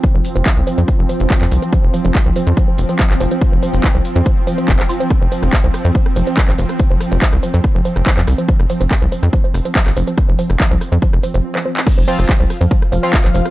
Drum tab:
CC |----------------|----------------|----------------|----------------|
HH |x-oxx-oxx-oxx-ox|x-oxx-oxx-oxx-ox|x-oxx-oxx-oxx-ox|x-oxx-oxx-oxx-ox|
SH |xxxxxxxxxxxxxxxx|xxxxxxxxxxxxxxxx|xxxxxxxxxxxxxxxx|xxxxxxxxxxxxxxxx|
CP |----x-------xx--|----x-------xx--|----x-------xx--|----x-------xx--|
SD |----------------|----------------|----------------|r--r--r--r--r--r|
BD |o---o---o---o---|o---o---o---o---|o---o---o---o---|o---o---o---o---|

CC |----------------|----------------|----------------|x---------------|
HH |x-oxx-oxx-oxx-ox|x-oxx-oxx-oxx-ox|x-oxx-oxx-ox----|x-oxx-oxx-oxx-ox|
SH |xxxxxxxxxxxxxxxx|xxxxxxxxxxxxxxxx|xxxxxxxxxxxx----|xxxxxxxxxxxxxxxx|
CP |----x-------xx--|----x-------xx--|----x--------x-x|----x-------xx--|
SD |--r--r--r--r--r-|-r--r--r--r--r--|r--r--r--r------|r--r--r--r--r--r|
BD |o---o---o---o---|o---o---o---o---|o---o---o-------|o---o---o---o---|